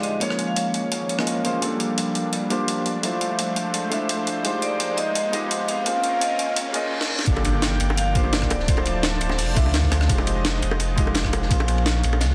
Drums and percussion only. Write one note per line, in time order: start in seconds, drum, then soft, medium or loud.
0.03 closed hi-hat medium
0.21 closed hi-hat medium
0.30 cross-stick soft
0.39 closed hi-hat medium
0.56 closed hi-hat medium
0.74 closed hi-hat medium
0.92 closed hi-hat medium
1.09 closed hi-hat medium
1.19 cross-stick medium
1.27 closed hi-hat medium
1.45 closed hi-hat medium
1.62 closed hi-hat medium
1.80 closed hi-hat medium
1.98 closed hi-hat medium
2.15 closed hi-hat medium
2.33 closed hi-hat medium
2.50 closed hi-hat medium
2.68 closed hi-hat medium
2.86 closed hi-hat medium
3.03 closed hi-hat medium
3.21 closed hi-hat medium
3.39 closed hi-hat medium
3.56 closed hi-hat medium
3.74 closed hi-hat medium
3.92 closed hi-hat medium
4.09 closed hi-hat medium
4.27 closed hi-hat medium
4.45 closed hi-hat medium
4.62 closed hi-hat medium
4.80 closed hi-hat loud
4.98 closed hi-hat medium
5.15 closed hi-hat medium
5.33 closed hi-hat medium
5.51 closed hi-hat loud
5.69 closed hi-hat medium
5.86 closed hi-hat medium
6.04 closed hi-hat medium
6.21 closed hi-hat loud
6.39 closed hi-hat medium
6.56 closed hi-hat medium
6.74 closed hi-hat medium
7.01 snare medium
7.19 snare loud
7.27 kick loud
7.27 closed hi-hat medium
7.27 ride medium
7.36 ride soft
7.36 high bongo medium
7.45 closed hi-hat medium
7.45 ride medium
7.62 snare loud
7.62 closed hi-hat loud
7.62 ride medium
7.62 high bongo medium
7.80 closed hi-hat medium
7.80 ride medium
7.90 high bongo loud
7.97 closed hi-hat medium
7.97 ride medium
8.15 kick loud
8.15 closed hi-hat medium
8.15 ride medium
8.24 high bongo medium
8.33 snare loud
8.33 closed hi-hat loud
8.33 ride medium
8.42 kick medium
8.42 cross-stick medium
8.50 closed hi-hat medium
8.50 ride medium
8.50 high bongo loud
8.60 snare soft
8.68 kick loud
8.68 closed hi-hat medium
8.68 ride medium
8.77 ride soft
8.77 high bongo medium
8.86 closed hi-hat medium
8.86 ride medium
9.03 snare loud
9.03 closed hi-hat loud
9.03 ride medium
9.03 high bongo medium
9.21 closed hi-hat medium
9.21 ride medium
9.29 snare soft
9.29 high bongo medium
9.38 closed hi-hat medium
9.38 open hi-hat medium
9.56 kick loud
9.56 closed hi-hat medium
9.56 ride medium
9.66 high bongo medium
9.74 snare loud
9.74 closed hi-hat loud
9.74 ride medium
9.83 kick medium
9.92 cross-stick medium
9.92 closed hi-hat medium
9.92 ride medium
9.92 high bongo medium
10.01 cross-stick soft
10.01 snare soft
10.09 kick loud
10.09 closed hi-hat medium
10.09 ride medium
10.18 ride soft
10.18 high bongo medium
10.27 closed hi-hat medium
10.27 ride medium
10.45 snare loud
10.45 closed hi-hat medium
10.45 ride medium
10.45 high bongo medium
10.62 closed hi-hat medium
10.62 ride medium
10.71 high bongo loud
10.80 closed hi-hat medium
10.80 ride medium
10.98 kick loud
10.98 closed hi-hat medium
10.98 ride medium
11.07 high bongo medium
11.15 snare loud
11.15 closed hi-hat medium
11.15 ride medium
11.24 kick medium
11.24 cross-stick soft
11.33 closed hi-hat medium
11.33 ride medium
11.33 high bongo medium
11.42 snare soft
11.51 kick loud
11.51 closed hi-hat medium
11.51 ride medium
11.60 ride soft
11.60 high bongo loud
11.68 closed hi-hat medium
11.68 ride medium
11.78 ride soft
11.86 snare loud
11.86 closed hi-hat medium
11.86 ride medium
11.86 high bongo medium
12.04 closed hi-hat medium
12.04 ride medium
12.13 ride soft
12.13 high bongo medium
12.21 snare loud
12.21 closed hi-hat medium
12.21 ride medium